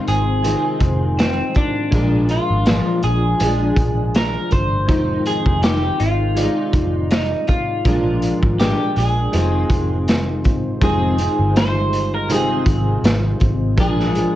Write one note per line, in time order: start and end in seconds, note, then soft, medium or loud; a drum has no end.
0.00 0.41 C3 medium
0.00 0.45 D#3 medium
0.00 0.21 G#3 medium
0.00 0.48 G#3 medium
0.00 0.46 C4 medium
0.00 0.22 D#4 medium
0.00 0.22 F4 medium
0.00 0.22 C5 medium
0.07 0.53 G#1 medium
0.07 1.22 G#4 loud
0.07 closed hi-hat medium
0.42 1.92 C3 medium
0.42 1.92 D#3 medium
0.42 1.69 G#3 medium
0.42 1.69 D#4 medium
0.42 1.70 F4 medium
0.42 1.70 C5 medium
0.42 closed hi-hat medium
0.48 1.93 G#3 medium
0.48 1.94 C4 medium
0.80 1.40 F1 medium
0.80 kick medium
0.80 closed hi-hat medium
1.19 1.56 C4 medium
1.19 snare medium
1.19 closed hi-hat medium
1.55 2.26 D4 medium
1.55 kick medium
1.55 closed hi-hat medium
1.91 2.38 A#1 medium
1.91 2.64 A#2 medium
1.91 2.67 F3 medium
1.91 3.17 G#3 medium
1.91 2.68 G#3 medium
1.91 3.17 D4 medium
1.91 2.67 D4 medium
1.91 3.18 F4 medium
1.91 3.18 A#4 medium
1.91 kick medium
1.91 closed hi-hat medium
2.29 3.04 F4 medium
2.29 closed hi-hat medium
2.50 2.80 G#1 medium
2.66 3.38 A#2 medium
2.66 3.42 F3 medium
2.66 3.42 G#3 medium
2.66 3.42 D4 medium
2.66 snare loud
2.66 closed hi-hat medium
3.03 3.33 A#1 medium
3.03 4.16 G#4 loud
3.03 closed hi-hat medium
3.39 3.70 A#1 medium
3.39 4.88 A#2 medium
3.39 4.89 F3 medium
3.39 4.66 G#3 medium
3.39 4.66 D4 medium
3.39 4.67 F4 medium
3.39 4.67 G#4 medium
3.39 closed hi-hat medium
3.45 4.90 G#3 medium
3.45 4.90 D4 medium
3.77 4.36 A#1 medium
3.77 kick medium
3.77 closed hi-hat medium
4.15 4.52 A#4 loud
4.15 snare medium
4.15 closed hi-hat medium
4.51 4.89 G1 medium
4.51 5.26 C5 loud
4.51 kick medium
4.51 closed hi-hat medium
4.87 5.18 F1 loud
4.87 5.63 F2 medium
4.87 5.61 C3 medium
4.87 5.61 D#3 medium
4.87 6.13 G#3 medium
4.87 5.64 G#3 medium
4.87 6.14 D#4 medium
4.87 5.64 D#4 medium
4.87 6.14 F4 medium
4.87 6.15 C5 medium
4.87 kick loud
4.87 closed hi-hat medium
5.26 5.61 G#4 medium
5.26 closed hi-hat medium
5.46 5.89 F1 medium
5.46 kick medium
5.62 6.35 C3 medium
5.62 6.37 D#3 medium
5.62 6.41 G#3 medium
5.62 6.38 D#4 medium
5.62 6.01 G4 medium
5.62 snare loud
5.62 closed hi-hat medium
6.00 6.46 G#1 medium
6.00 7.07 F4 medium
6.00 closed hi-hat medium
6.35 7.85 C3 medium
6.35 7.86 D#3 medium
6.35 7.62 G#3 medium
6.35 7.62 D#4 medium
6.35 7.62 F4 medium
6.35 7.63 D5 medium
6.35 closed hi-hat medium
6.41 7.87 G#3 medium
6.41 7.87 D#4 medium
6.73 7.33 F1 medium
6.73 kick medium
6.73 closed hi-hat medium
7.11 7.47 D#4 medium
7.11 snare loud
7.11 closed hi-hat medium
7.47 8.55 F4 loud
7.47 kick medium
7.47 closed hi-hat soft
7.85 8.31 A#1 loud
7.85 8.57 A#2 medium
7.85 8.60 F3 medium
7.85 9.11 G#3 medium
7.85 8.61 G#3 medium
7.85 9.11 D4 medium
7.85 8.60 D4 medium
7.85 9.11 F4 medium
7.85 9.12 A#4 medium
7.85 kick medium
7.85 closed hi-hat medium
8.22 closed hi-hat medium
8.42 8.72 G#1 medium
8.42 kick medium
8.59 9.32 A#2 soft
8.59 9.35 F3 medium
8.59 9.37 G#3 medium
8.59 9.35 D4 medium
8.59 8.97 G4 medium
8.59 snare medium
8.59 closed hi-hat medium
8.96 9.26 A#1 medium
8.96 10.41 G#4 medium
8.96 closed hi-hat medium
9.32 9.63 F1 medium
9.32 10.81 C3 soft
9.32 10.82 D#3 medium
9.32 10.58 G#3 medium
9.32 10.59 D#4 medium
9.32 10.59 F4 medium
9.32 10.60 C5 medium
9.32 closed hi-hat medium
9.38 10.83 G#3 medium
9.38 10.83 C4 medium
9.70 10.45 F1 medium
9.70 kick medium
9.70 closed hi-hat medium
10.08 snare medium
10.08 closed hi-hat medium
10.44 10.74 G1 medium
10.44 kick medium
10.44 closed hi-hat medium
10.81 11.27 F1 loud
10.81 11.19 F2 medium
10.81 11.19 C3 medium
10.81 11.19 D#3 medium
10.81 10.88 G3 medium
10.81 11.19 G#3 medium
10.81 11.17 C4 medium
10.81 11.45 D#4 medium
10.81 11.45 F4 medium
10.81 11.57 G#4 medium
10.81 11.46 C5 medium
10.81 kick loud
10.81 closed hi-hat medium
10.87 11.48 G#3 medium
11.18 12.29 D#3 soft
11.18 12.33 G#3 soft
11.18 12.30 C4 medium
11.18 closed hi-hat medium
11.39 12.63 G1 medium
11.54 11.62 G3 medium
11.54 12.19 D#4 medium
11.54 12.19 F4 medium
11.54 12.19 C5 medium
11.54 snare loud
11.54 closed hi-hat medium
11.58 12.21 G#3 medium
11.58 12.14 C5 loud
11.93 closed hi-hat medium
12.15 12.32 A#4 medium
12.28 13.77 C3 medium
12.28 13.78 D#3 medium
12.28 13.55 G#3 medium
12.28 13.55 D#4 medium
12.28 13.56 F4 medium
12.28 13.05 G#4 medium
12.28 13.56 C5 medium
12.28 closed hi-hat medium
12.33 13.80 G#3 medium
12.33 13.80 C4 medium
12.66 12.96 G#1 medium
12.66 kick medium
12.66 closed hi-hat medium
13.03 13.33 G#1 medium
13.03 snare loud
13.03 closed hi-hat medium
13.40 13.78 G#1 medium
13.40 kick medium
13.40 closed hi-hat soft
13.77 14.24 A#1 medium
13.77 14.15 A#2 medium
13.77 14.15 F3 medium
13.77 14.35 G#3 medium
13.77 14.15 G#3 medium
13.77 14.35 D4 medium
13.77 14.13 D4 medium
13.77 14.35 F4 medium
13.77 14.35 G#4 medium
13.77 14.35 A#4 medium
13.77 kick loud
13.77 closed hi-hat medium
14.00 snare soft
14.14 14.35 F3 soft
14.14 14.35 G#3 soft
14.14 14.35 D4 soft
14.14 closed hi-hat medium